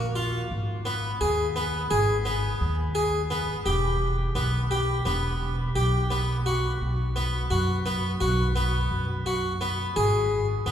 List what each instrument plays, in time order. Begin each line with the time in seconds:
Already playing: upright bass A#1
0.16 harpsichord F4
0.51 upright bass G#1
0.85 harpsichord B3
1.21 upright bass D#2, harpsichord G#4
1.56 harpsichord B3
1.91 upright bass G#1, harpsichord G#4
2.25 harpsichord B3
2.61 upright bass D#2
2.95 harpsichord G#4
3.30 harpsichord B3
3.66 upright bass E1, harpsichord G4
4.35 upright bass B1, harpsichord B3
4.71 harpsichord G4
5.05 upright bass E1, harpsichord B3
5.75 upright bass B1, harpsichord G4
6.11 harpsichord B3
6.46 harpsichord F#4
6.81 upright bass B1
7.16 harpsichord B3
7.51 upright bass F#2, harpsichord F#4
7.86 harpsichord B3
8.21 upright bass B1, harpsichord F#4
8.56 harpsichord B3
8.91 upright bass F#2
9.26 harpsichord F#4
9.61 harpsichord B3
9.96 upright bass G#1, harpsichord G#4
10.66 upright bass D#2, harpsichord B3